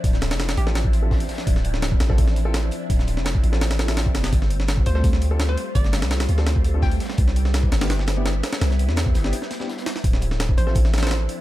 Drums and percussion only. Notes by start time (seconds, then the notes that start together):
0.04 kick, closed hi-hat, open hi-hat
0.13 snare, closed hi-hat
0.21 snare, closed hi-hat, open hi-hat
0.31 snare, open hi-hat
0.40 snare, closed hi-hat, open hi-hat
0.49 snare, open hi-hat
0.57 closed hi-hat, open hi-hat
0.67 snare
0.75 snare, closed hi-hat, open hi-hat
0.85 kick
0.93 closed hi-hat, open hi-hat
1.11 kick, snare, open hi-hat
1.20 open hi-hat
1.29 snare, closed hi-hat, open hi-hat
1.34 snare, closed hi-hat
1.38 snare, closed hi-hat
1.47 kick, closed hi-hat, open hi-hat
1.56 snare
1.64 closed hi-hat, open hi-hat
1.74 snare
1.82 snare, closed hi-hat, open hi-hat
1.92 kick
2.00 snare, closed hi-hat, open hi-hat
2.10 kick, snare
2.18 kick, closed hi-hat, open hi-hat
2.28 snare
2.36 closed hi-hat, open hi-hat
2.54 snare, closed hi-hat, open hi-hat
2.71 closed hi-hat, open hi-hat
2.90 kick, closed hi-hat, open hi-hat
2.99 snare, closed hi-hat
3.07 closed hi-hat, open hi-hat
3.17 snare
3.25 snare, closed hi-hat, open hi-hat
3.35 kick, snare
3.44 open hi-hat
3.53 snare
3.61 snare, closed hi-hat, open hi-hat
3.71 snare, open hi-hat
3.79 snare, closed hi-hat, open hi-hat
3.88 snare, open hi-hat
3.97 snare, closed hi-hat, open hi-hat
4.06 kick
4.15 snare, closed hi-hat, open hi-hat
4.24 snare, open hi-hat
4.33 kick, closed hi-hat, open hi-hat
4.42 snare
4.50 closed hi-hat, open hi-hat
4.60 snare
4.68 snare, closed hi-hat, open hi-hat
4.78 kick
4.86 closed hi-hat, open hi-hat
4.95 snare
5.04 kick, closed hi-hat, open hi-hat
5.13 snare
5.21 closed hi-hat, open hi-hat
5.39 snare, closed hi-hat, open hi-hat
5.57 closed hi-hat, open hi-hat
5.75 kick, closed hi-hat, open hi-hat
5.84 snare, closed hi-hat
5.93 snare, closed hi-hat, open hi-hat
6.02 snare, open hi-hat
6.11 snare, closed hi-hat, open hi-hat
6.20 snare, open hi-hat
6.29 closed hi-hat, open hi-hat
6.38 snare
6.46 snare, closed hi-hat, open hi-hat
6.56 kick
6.64 closed hi-hat, open hi-hat
6.82 kick, snare, open hi-hat
6.92 open hi-hat
7.00 snare, closed hi-hat, open hi-hat
7.05 snare, closed hi-hat
7.09 snare, closed hi-hat
7.17 kick, closed hi-hat, open hi-hat
7.28 snare
7.36 closed hi-hat, open hi-hat
7.45 snare
7.54 snare, closed hi-hat, open hi-hat
7.63 kick
7.72 snare, closed hi-hat, open hi-hat
7.81 snare, open hi-hat
7.90 snare, closed hi-hat, open hi-hat
7.99 snare
8.07 snare, closed hi-hat, open hi-hat
8.25 snare, closed hi-hat, open hi-hat
8.43 snare, closed hi-hat, open hi-hat
8.53 snare, open hi-hat
8.61 snare, closed hi-hat, open hi-hat
8.70 snare, closed hi-hat
8.79 closed hi-hat, open hi-hat
8.89 snare
8.96 snare, closed hi-hat, open hi-hat
9.06 kick, snare
9.15 snare, closed hi-hat, open hi-hat
9.24 snare
9.33 closed hi-hat, open hi-hat
9.42 snare
9.51 snare, closed hi-hat, open hi-hat
9.60 snare
9.69 snare, closed hi-hat
9.77 snare, closed hi-hat
9.86 snare, open hi-hat
9.96 snare
10.04 kick, closed hi-hat, open hi-hat
10.13 snare
10.21 closed hi-hat, open hi-hat
10.31 snare
10.40 snare, closed hi-hat, open hi-hat
10.49 kick
10.57 closed hi-hat, open hi-hat
10.67 snare
10.75 kick, closed hi-hat, open hi-hat
10.85 snare
10.93 snare, closed hi-hat, open hi-hat
10.98 snare, open hi-hat
11.03 snare, open hi-hat
11.07 snare, closed hi-hat, open hi-hat
11.11 snare, open hi-hat
11.29 closed hi-hat, open hi-hat